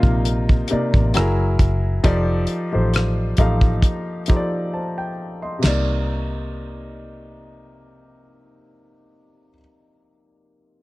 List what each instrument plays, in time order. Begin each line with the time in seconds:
Already playing: grand piano C3 A#3 D#4 F4 D5
0.03 fingered electric bass A#1, kick
0.25 closed hi-hat
0.49 kick
0.68 grand piano C3 A#3 D#4, closed hi-hat
0.72 grand piano D5, muted fingered electric bass stroke
0.94 fingered electric bass A1, kick
1.14 fingered electric bass F#1, grand piano F#3 E4 G#4 A#4, cross-stick, closed hi-hat
1.59 fingered electric bass F#1, kick, closed hi-hat
2.04 fingered electric bass F1, grand piano F3 D#4 G4 A4 D5, kick, closed hi-hat
2.47 closed hi-hat
2.73 fingered electric bass A1, grand piano F3 D#4 G4 A4 C5
2.94 cross-stick, closed hi-hat
3.37 fingered electric bass A1, grand piano F3 D#4 G4 A4 F5, kick, closed hi-hat
3.61 kick
3.82 kick, closed hi-hat
4.26 grand piano F3 D#4 G4 A4, kick, closed hi-hat
4.30 grand piano C5
4.36 grand piano D5
4.74 grand piano C5 A5
4.98 grand piano G5
5.42 grand piano D#5 C6
5.59 grand piano C3 A#3, crash
5.64 fingered electric bass C2, grand piano D#4 D5, snare